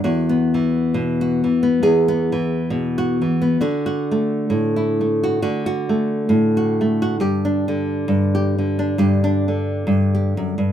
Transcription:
0.04 1.81 E2 medium
0.04 1.21 F#4 medium
0.29 1.62 B3 medium
0.54 1.43 E3 medium
0.94 1.44 B2 medium
1.21 1.83 F#4 medium
1.44 2.31 E3 medium
1.63 2.07 B3 medium
1.83 3.61 E2 medium
1.83 2.97 G#4 medium
2.08 3.40 B3 medium
2.32 3.20 E3 medium
2.70 3.22 B2 medium
2.98 3.57 F#4 medium
3.22 3.56 E3 medium
3.42 3.61 B3 medium
3.61 5.40 D3 medium
3.61 3.85 F#4 medium
3.86 4.76 F#4 medium
4.11 5.00 A3 medium
4.50 5.40 A2 medium
4.76 5.21 E4 medium
5.01 5.88 A3 medium
5.24 5.41 F#4 medium
5.42 7.67 D3 medium
5.42 5.65 F#4 medium
5.66 6.55 F#4 medium
5.89 6.80 A3 medium
6.29 7.19 A2 medium
6.57 7.01 F#4 medium
6.81 7.15 A3 medium
7.02 7.16 F#4 medium
7.20 8.07 G2 medium
7.20 8.34 G4 medium
7.45 8.78 D4 medium
7.68 8.57 D3 medium
8.08 8.97 G2 medium
8.35 8.98 G4 medium
8.58 9.47 D3 medium
8.79 9.23 D4 medium
8.98 9.86 G2 medium
8.98 10.13 G4 medium
9.24 10.72 D4 medium
9.48 10.72 D3 medium
9.87 10.37 G2 medium
10.15 10.72 G4 medium
10.37 10.57 F#2 medium
10.58 10.72 G2 medium

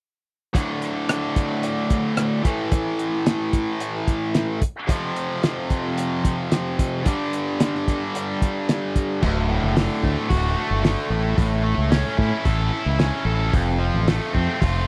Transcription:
0.53 2.42 D2 medium
0.53 2.42 A2 medium
0.53 2.44 D3 medium
0.53 kick medium
0.53 closed hi-hat medium
0.82 closed hi-hat medium
1.09 cross-stick loud
1.09 closed hi-hat medium
1.36 kick medium
1.36 closed hi-hat soft
1.63 closed hi-hat medium
1.90 kick medium
1.90 closed hi-hat medium
2.17 cross-stick medium
2.17 closed hi-hat medium
2.43 4.59 A2 medium
2.43 4.60 E3 medium
2.43 4.61 A3 medium
2.43 kick medium
2.43 closed hi-hat medium
2.72 kick loud
2.72 closed hi-hat medium
2.99 closed hi-hat medium
3.26 snare loud
3.26 closed hi-hat medium
3.53 kick medium
3.53 closed hi-hat medium
3.80 closed hi-hat medium
4.08 kick medium
4.08 closed hi-hat soft
4.35 snare loud
4.35 closed hi-hat medium
4.62 kick medium
4.62 closed hi-hat medium
4.87 7.03 F2 medium
4.87 7.04 C3 medium
4.87 7.05 F3 medium
4.87 kick loud
4.87 closed hi-hat medium
5.16 closed hi-hat medium
5.43 snare loud
5.43 closed hi-hat medium
5.70 kick medium
5.70 closed hi-hat soft
5.98 closed hi-hat medium
6.25 kick medium
6.25 closed hi-hat medium
6.52 snare loud
6.52 closed hi-hat medium
6.79 kick medium
6.79 closed hi-hat medium
7.04 9.20 G2 medium
7.04 9.20 D3 medium
7.04 9.21 G3 medium
7.04 kick loud
7.04 closed hi-hat medium
7.33 closed hi-hat medium
7.60 snare loud
7.60 closed hi-hat medium
7.75 snare soft
7.88 kick medium
7.88 closed hi-hat soft
8.15 closed hi-hat medium
8.42 kick medium
8.42 closed hi-hat medium
8.69 snare loud
8.69 closed hi-hat medium
8.96 kick medium
8.96 closed hi-hat medium
9.22 9.59 D1 loud
9.22 10.57 D2 medium
9.22 kick loud
9.22 crash medium
9.49 10.84 A2 medium
9.63 9.87 F#1 medium
9.76 10.81 D3 medium
9.76 snare loud
9.76 open hi-hat soft
10.03 10.15 D2 medium
10.03 10.56 A3 medium
10.03 kick medium
10.29 10.54 D1 medium
10.29 11.11 F#4 medium
10.29 kick loud
10.29 open hi-hat medium
10.56 11.64 A3 medium
10.71 10.95 G1 medium
10.83 11.10 D3 medium
10.83 snare loud
10.83 open hi-hat soft
11.09 11.35 A1 medium
11.09 11.35 A2 medium
11.36 11.74 A1 loud
11.36 12.72 A2 medium
11.36 kick loud
11.36 open hi-hat medium
11.64 12.99 A3 medium
11.78 12.02 C#2 medium
11.91 12.98 C#4 medium
11.91 snare loud
11.91 open hi-hat medium
12.18 12.31 A2 medium
12.18 12.71 E4 medium
12.18 kick medium
12.45 12.70 A1 medium
12.45 13.24 A4 medium
12.45 kick medium
12.45 open hi-hat soft
12.72 13.53 E4 medium
12.86 13.10 C#2 medium
12.99 13.53 C#4 medium
12.99 snare loud
12.99 open hi-hat soft
13.25 13.50 A1 medium
13.25 13.53 A4 medium
13.53 13.89 F1 medium
13.53 14.87 F2 medium
13.53 kick loud
13.53 open hi-hat soft
13.79 14.87 F3 medium
13.94 14.18 A1 medium
14.08 14.87 A3 medium
14.08 snare loud
14.08 open hi-hat soft
14.33 14.47 F2 medium
14.33 14.85 C4 medium
14.33 kick medium
14.60 14.86 F1 loud
14.60 14.87 F4 medium
14.60 kick loud
14.60 open hi-hat medium

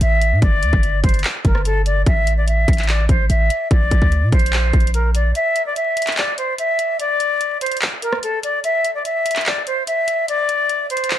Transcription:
0.01 0.33 A1 loud
0.01 0.40 E5 loud
0.01 closed hi-hat medium
0.21 closed hi-hat medium
0.32 0.42 A2 loud
0.42 0.64 G1 loud
0.42 1.00 D5 loud
0.42 kick loud
0.42 closed hi-hat medium
0.63 0.72 D2 loud
0.63 closed hi-hat medium
0.73 1.02 G1 loud
0.73 kick medium
0.83 closed hi-hat medium
1.04 1.23 G1 loud
1.04 1.20 C5 medium
1.04 kick loud
1.04 closed hi-hat medium
1.09 closed hi-hat medium
1.14 closed hi-hat medium
1.19 closed hi-hat soft
1.24 clap loud
1.24 closed hi-hat medium
1.45 2.04 G1 loud
1.45 1.61 A#4 medium
1.45 kick medium
1.45 closed hi-hat medium
1.55 cross-stick medium
1.65 1.82 A4 medium
1.65 closed hi-hat medium
1.86 2.02 D5 medium
1.86 closed hi-hat medium
2.06 2.66 A1 loud
2.06 2.35 E5 loud
2.06 kick loud
2.06 closed hi-hat medium
2.27 closed hi-hat medium
2.37 2.45 D5 medium
2.48 2.86 E5 medium
2.48 closed hi-hat medium
2.68 3.08 A1 loud
2.68 kick loud
2.68 closed hi-hat medium
2.73 closed hi-hat medium
2.78 clap medium
2.78 closed hi-hat medium
2.84 closed hi-hat soft
2.89 3.05 D5 medium
2.89 clap loud
2.89 closed hi-hat medium
3.09 3.29 A1 loud
3.09 3.25 C5 medium
3.09 kick medium
3.09 closed hi-hat medium
3.30 3.49 A1 loud
3.30 3.68 E5 medium
3.30 closed hi-hat medium
3.50 closed hi-hat loud
3.71 3.91 A#1 loud
3.71 4.29 D5 loud
3.71 kick loud
3.71 closed hi-hat medium
3.91 4.01 A#1 loud
3.91 kick medium
3.91 closed hi-hat medium
4.02 4.24 D2 loud
4.02 kick medium
4.12 closed hi-hat medium
4.22 4.32 A#2 loud
4.32 4.72 A#1 loud
4.32 4.90 C5 medium
4.32 kick loud
4.32 closed hi-hat medium
4.39 closed hi-hat medium
4.46 closed hi-hat medium
4.53 clap loud
4.53 closed hi-hat medium
4.73 5.33 A#1 loud
4.73 kick medium
4.73 closed hi-hat soft
4.80 closed hi-hat medium
4.87 closed hi-hat medium
4.94 5.10 A#4 medium
4.94 closed hi-hat medium
5.15 5.31 D5 medium
5.15 closed hi-hat loud
5.35 5.64 E5 loud
5.35 closed hi-hat medium
5.56 closed hi-hat medium
5.66 5.74 D5 medium
5.76 6.15 E5 medium
5.76 closed hi-hat medium
5.97 closed hi-hat medium
6.02 closed hi-hat medium
6.07 clap medium
6.07 closed hi-hat medium
6.12 closed hi-hat soft
6.17 6.34 D5 medium
6.17 clap loud
6.17 closed hi-hat medium
6.38 6.54 C5 medium
6.38 closed hi-hat medium
6.58 6.97 E5 medium
6.58 closed hi-hat medium
6.79 closed hi-hat medium
6.99 7.57 D5 loud
6.99 closed hi-hat medium
7.20 closed hi-hat medium
7.41 closed hi-hat medium
7.61 7.77 C5 medium
7.61 closed hi-hat medium
7.66 closed hi-hat medium
7.72 closed hi-hat medium
7.77 closed hi-hat soft
7.82 clap loud
7.82 closed hi-hat medium
8.02 8.18 A#4 medium
8.02 closed hi-hat medium
8.13 cross-stick medium
8.23 8.39 A4 medium
8.23 closed hi-hat medium
8.43 8.60 D5 medium
8.43 closed hi-hat loud
8.64 8.93 E5 loud
8.64 closed hi-hat medium
8.85 closed hi-hat medium
8.95 9.03 D5 medium
9.05 9.44 E5 medium
9.05 closed hi-hat medium
9.26 closed hi-hat medium
9.31 closed hi-hat medium
9.36 clap medium
9.36 closed hi-hat medium
9.41 closed hi-hat soft
9.46 9.62 D5 medium
9.46 clap loud
9.46 closed hi-hat medium
9.67 9.83 C5 medium
9.67 closed hi-hat medium
9.87 10.26 E5 medium
9.87 closed hi-hat medium
10.08 closed hi-hat medium
10.28 10.86 D5 loud
10.28 closed hi-hat medium
10.49 closed hi-hat medium
10.70 closed hi-hat medium
10.90 11.19 C5 medium
10.90 closed hi-hat medium
10.97 closed hi-hat medium
11.04 closed hi-hat medium
11.11 clap loud
11.11 closed hi-hat medium

